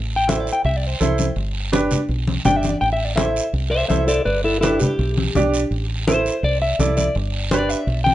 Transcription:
Already playing: A1
0.16 G5
0.27 E4 A4 C5 E5, high conga, short guiro
0.40 D5
0.47 short guiro
0.53 G5
0.64 C2 E5, high conga, long guiro
0.77 D5
0.87 C5
1.00 C2 E4 A4 C5, high conga, short guiro
1.18 high conga, short guiro
1.36 G1, high conga, long guiro
1.72 D4 G4 B4, high conga, short guiro
1.91 low conga, short guiro
2.09 B1, high conga, long guiro
2.27 high conga
2.45 G1 D4 G4 D5 G5, high conga, low conga, short guiro
2.56 E5
2.63 high conga, short guiro
2.69 D5
2.81 A1 G5, high conga, long guiro
2.93 E5
3.05 D5
3.16 E4 A4 C5 E5, high conga, short guiro
3.36 short guiro
3.53 C2, high conga, long guiro
3.70 C5 E5
3.88 C2 E4 A4 C5 E5, high conga, short guiro
4.08 A4 D5, short guiro
4.25 G1 B4 D5, high conga, long guiro
4.44 E4 A4
4.61 D4 E4 G4 A4 B4, high conga, short guiro
4.80 G4, low conga, short guiro
4.99 B1, high conga, long guiro
5.17 high conga
5.35 B1 D4 G4 D5, high conga, low conga, short guiro
5.54 short guiro
5.71 A1, high conga, long guiro
6.07 E4 A4 C5, high conga, short guiro
6.26 short guiro
6.43 C2 D5, high conga, long guiro
6.62 E5
6.79 C2 E4 A4 D5, high conga, short guiro
6.97 D5, high conga, short guiro
7.15 G1, high conga, long guiro
7.51 D4 G4 B4 D5, high conga, short guiro
7.69 E5, short guiro
7.87 B1, high conga, long guiro
8.04 G5, high conga

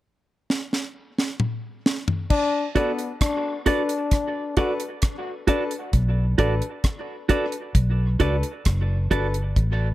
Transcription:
0.50 snare
0.73 snare
1.18 snare
1.40 mid tom
1.86 snare
2.08 floor tom
2.30 D4, kick, crash
2.75 B3 D4 F#4 A4 B4 D5, kick, closed hi-hat
2.99 closed hi-hat
3.21 D4, kick, cross-stick, closed hi-hat
3.66 D4 F#4 A4 B4 D5, kick, closed hi-hat
3.89 closed hi-hat
4.11 kick, cross-stick, closed hi-hat
4.57 D4 F#4 A4 B4 D5, kick, closed hi-hat
4.80 closed hi-hat
5.02 kick, cross-stick, closed hi-hat
5.47 D4 F#4 A4 B4 D5, kick, closed hi-hat
5.71 closed hi-hat
5.93 B1, kick, closed hi-hat
6.38 A1 D4 F#4 A4 B4 D5, kick, closed hi-hat
6.62 closed hi-hat
6.84 kick, cross-stick, closed hi-hat
7.29 D4 F#4 A4 B4 D5, kick, closed hi-hat
7.52 closed hi-hat
7.75 B1, kick, closed hi-hat
8.20 C#2 D4 F#4 A4 B4 D5, kick, closed hi-hat
8.43 closed hi-hat
8.65 F#1, kick, cross-stick, closed hi-hat
9.11 G1 D4 F#4 A4 B4 D5, kick, closed hi-hat
9.34 closed hi-hat
9.56 A1, kick, closed hi-hat

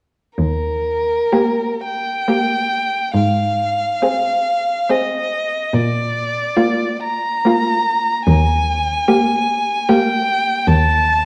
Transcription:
0.38 D#2 A#4
1.33 A#3 G4
1.84 G5
2.29 A#3 G4
3.14 G#2 F5
4.02 C4 G#4
4.89 C4 G#4 D#5
5.73 A#2 D5
6.57 A#3 F4
7.04 A#5
7.45 A#3 F4
8.27 D#2 G#5
9.08 A#3 G4
9.89 A#3 G4 G5
10.67 D#2 A5

